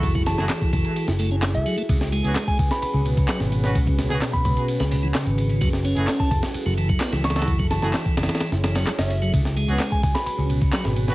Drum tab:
RD |x---x---x---x-x-x-------x-x-x-x-|x---x-x-x---x---x---x---x---x---|x---x---x---x-x-x-------x-x-x-x-|x---x-x-x---x---x---x---x---xxxx|
HH |--------------------o-----------|--------------------------------|--------------------o-----------|--------------------------------|
SH |x-x---x-x-x---x-x-x---x-x-x---x-|x-x---x-x-x---x-x-x---x-x-x---x-|x-x---x-x-x---x-x-x---x-x-x---x-|x-x---x-x-x---x-x-x---x-x-x---x-|
CP |--------x---------------x-------|--------x---------------x-------|--------x---------------x-------|--------x---------------x-------|
SD |----o-o-o---------o-----o-------|--o-----o-----o---------o-o---o-|----o-o-o---------o-----o-------|--o-----o-----o---------o-o-oooo|
BD |o-o-------o-o-------------------|o---------o-o---------o---------|o-o-------o-o-------------------|o---------o-o---------o---------|

RD |x---x---x---xxxxx---x-x-x-x-x-x-|x---x-x-x---x---x---x---x---x---|
HH |--------------------------------|--------------------------------|
SH |x-x---x-x-x---x-x-x---x-x-x---x-|x-x---x-x-x---x-x-x---x-x-x---x-|
CP |--------x---------------x-------|--------x---------------x-------|
SD |----o-o-o---ooooo-o-o-o-o-o-----|--o-----o-----o---------o-o---o-|
BD |o-o-------o---------------------|o---------o-o---------o---------|